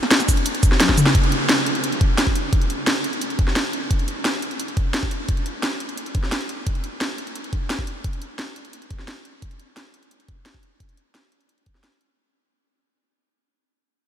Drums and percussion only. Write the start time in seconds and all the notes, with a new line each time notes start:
0.03 snare
0.11 snare, closed hi-hat
0.20 snare, cabasa
0.29 kick, closed hi-hat, cabasa
0.37 closed hi-hat
0.46 closed hi-hat
0.55 closed hi-hat
0.63 kick, closed hi-hat, cabasa
0.72 snare
0.80 snare, closed hi-hat, high tom, cabasa
0.89 kick, snare
0.98 closed hi-hat, mid tom, cabasa
1.06 snare
1.15 kick, closed hi-hat
1.24 closed hi-hat
1.32 closed hi-hat
1.49 snare, closed hi-hat
1.66 closed hi-hat
1.75 closed hi-hat
1.84 closed hi-hat
1.92 closed hi-hat
2.01 kick, closed hi-hat
2.18 snare, closed hi-hat
2.27 kick
2.35 closed hi-hat
2.53 kick, closed hi-hat
2.62 closed hi-hat
2.70 closed hi-hat
2.87 snare, closed hi-hat
3.04 closed hi-hat
3.13 closed hi-hat
3.21 closed hi-hat
3.30 closed hi-hat
3.39 kick, closed hi-hat
3.48 snare
3.56 snare, closed hi-hat
3.73 closed hi-hat
3.91 kick, closed hi-hat
3.99 closed hi-hat
4.08 closed hi-hat
4.25 snare, closed hi-hat
4.42 closed hi-hat
4.51 closed hi-hat
4.60 closed hi-hat
4.68 closed hi-hat
4.77 kick, closed hi-hat
4.94 snare, closed hi-hat
5.03 kick
5.11 closed hi-hat
5.29 kick, closed hi-hat
5.37 closed hi-hat
5.46 closed hi-hat
5.63 snare, closed hi-hat
5.80 closed hi-hat
5.89 closed hi-hat
5.97 closed hi-hat
6.06 closed hi-hat
6.15 kick, closed hi-hat
6.23 snare
6.32 snare, closed hi-hat
6.41 closed hi-hat
6.49 closed hi-hat
6.67 kick, closed hi-hat
6.75 closed hi-hat
6.84 closed hi-hat
7.01 snare, closed hi-hat
7.18 closed hi-hat
7.27 closed hi-hat
7.35 closed hi-hat
7.44 closed hi-hat
7.53 kick, closed hi-hat
7.70 snare, closed hi-hat
7.79 kick
7.87 closed hi-hat
8.04 kick, closed hi-hat
8.13 closed hi-hat
8.22 closed hi-hat
8.39 snare, closed hi-hat
8.56 closed hi-hat
8.65 closed hi-hat
8.73 closed hi-hat
8.82 closed hi-hat
8.90 kick, closed hi-hat
8.99 snare
9.08 snare, closed hi-hat
9.25 closed hi-hat
9.42 kick, closed hi-hat
9.51 closed hi-hat
9.60 closed hi-hat
9.77 snare, closed hi-hat
9.94 closed hi-hat
10.03 closed hi-hat
10.11 closed hi-hat
10.20 closed hi-hat
10.28 kick, closed hi-hat
10.46 snare, closed hi-hat
10.54 kick
10.63 closed hi-hat
10.80 kick, closed hi-hat
10.89 closed hi-hat
10.97 closed hi-hat
11.15 snare, closed hi-hat
11.32 closed hi-hat
11.41 closed hi-hat
11.49 closed hi-hat
11.58 closed hi-hat
11.66 kick, closed hi-hat
11.75 snare
11.84 snare, closed hi-hat
11.92 closed hi-hat
12.01 closed hi-hat